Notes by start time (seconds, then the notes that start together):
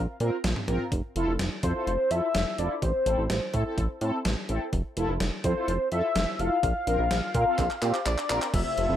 0.20 A#2 C4 F4 A#4, closed hi-hat
0.44 A#1, snare, closed hi-hat
0.56 mid tom
0.68 A#1 C4 F4 A#4, closed hi-hat, mid tom
0.92 F1, kick, closed hi-hat
1.16 F1 E4 F4 A4, closed hi-hat
1.27 F1
1.39 F1, snare, closed hi-hat
1.63 F2 E4 F4 A4 C5, kick, closed hi-hat
1.75 E4 F4 A4
1.87 F1, closed hi-hat
2.11 F2 E4 F4 A4 E5, closed hi-hat
2.35 F1, snare, closed hi-hat
2.58 F1 E4 F4 A4 D5, closed hi-hat
2.82 A1 C5, kick, closed hi-hat
3.06 A1 C4 E4 A4, closed hi-hat
3.18 A1
3.30 A1, snare, closed hi-hat
3.54 A2 C4 E4 A4, kick, closed hi-hat
3.66 C4 E4 A4
3.78 A1, kick, closed hi-hat
4.01 A2 C4 E4 A4, closed hi-hat
4.25 A1, snare, closed hi-hat
4.49 A1 C4 E4 A4, closed hi-hat
4.73 F1, kick, closed hi-hat
4.97 F1 E4 F4 A4, closed hi-hat
5.09 F1
5.20 F1, snare, closed hi-hat
5.44 F2 E4 F4 A4 C5, kick, closed hi-hat
5.56 E4 F4 A4
5.68 F1, closed hi-hat
5.92 F2 E4 F4 A4 E5, closed hi-hat
6.15 F1, snare, closed hi-hat
6.39 F1 E4 F4 A4 F5, closed hi-hat
6.63 A#1, kick, closed hi-hat
6.87 A#1 C4 F4 A#4, closed hi-hat
6.99 A#1
7.11 A#1, snare, closed hi-hat
7.34 A#2 C4 F4 A#4, kick, closed hi-hat
7.47 C4 F4 A4
7.58 A#1, kick, clap, closed hi-hat
7.70 clap
7.82 A#2 C4 F4 G4, clap, closed hi-hat
7.94 clap
8.06 A#1 D5, clap, closed hi-hat
8.18 clap
8.30 A#1 C4 F4 A#4, clap, closed hi-hat
8.42 clap
8.54 F1 C3 F3 A3 C4 F4 E5, kick, closed hi-hat, crash
8.77 F1 E4 F4 A4, closed hi-hat
8.89 F1